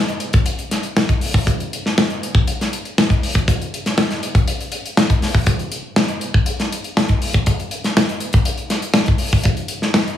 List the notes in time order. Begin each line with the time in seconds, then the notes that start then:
0.09 closed hi-hat
0.20 closed hi-hat
0.33 kick, closed hi-hat
0.46 closed hi-hat
0.59 closed hi-hat
0.71 snare, closed hi-hat
0.83 closed hi-hat
0.97 snare, closed hi-hat
1.09 kick, closed hi-hat
1.21 open hi-hat
1.34 kick
1.47 kick, closed hi-hat
1.60 closed hi-hat
1.73 closed hi-hat
1.86 snare
1.98 snare, closed hi-hat
2.10 closed hi-hat
2.23 closed hi-hat
2.35 kick
2.48 closed hi-hat
2.61 snare, closed hi-hat
2.73 closed hi-hat
2.85 closed hi-hat
2.98 snare, closed hi-hat
3.10 kick, closed hi-hat
3.23 open hi-hat
3.35 kick, closed hi-hat
3.48 kick, closed hi-hat
3.62 closed hi-hat
3.74 closed hi-hat
3.86 snare, closed hi-hat
3.98 snare, closed hi-hat
4.11 snare, closed hi-hat
4.23 closed hi-hat
4.35 kick, closed hi-hat
4.48 closed hi-hat
4.61 closed hi-hat
4.72 closed hi-hat
4.86 closed hi-hat
4.97 snare, closed hi-hat
5.10 kick, closed hi-hat
5.22 snare, open hi-hat
5.35 kick
5.46 kick, closed hi-hat
5.59 closed hi-hat
5.72 closed hi-hat
5.96 snare, closed hi-hat
6.08 closed hi-hat
6.21 closed hi-hat
6.34 kick
6.46 closed hi-hat
6.60 snare, closed hi-hat
6.72 closed hi-hat
6.84 closed hi-hat
6.97 snare, closed hi-hat
7.08 kick, closed hi-hat
7.22 open hi-hat
7.33 kick, closed hi-hat
7.46 kick, closed hi-hat
7.60 closed hi-hat
7.71 closed hi-hat
7.84 snare, closed hi-hat
7.97 snare, closed hi-hat
8.09 closed hi-hat
8.20 closed hi-hat
8.33 kick, closed hi-hat
8.45 closed hi-hat
8.58 closed hi-hat
8.70 snare, closed hi-hat
8.82 closed hi-hat
8.94 snare, closed hi-hat
9.06 kick, closed hi-hat
9.18 open hi-hat
9.33 kick
9.44 kick, closed hi-hat
9.57 closed hi-hat
9.68 closed hi-hat
9.82 snare
9.94 snare, closed hi-hat
10.08 closed hi-hat